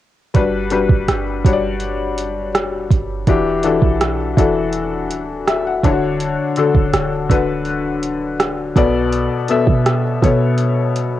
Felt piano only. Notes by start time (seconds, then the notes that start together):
0.34 G3 D4 F#4 B4
0.71 G3 D4 F#4 B4
1.44 G3 D4 F#4 C#5
1.53 D5
3.27 E3 D4 F#4 G4
3.64 E3 D4 F#4 A4
4.37 E3 D4 F#4 A4
5.48 E5
5.66 F#5
5.84 D3 D4 E4 C#5 A5
5.91 F#4
6.57 D3 D4 F#4 A4
7.29 D3 D4 F#4 B4
8.76 B2 B3 A4 D5
9.49 B2 B3 A4 E5
10.22 B2 B3 A4 C#5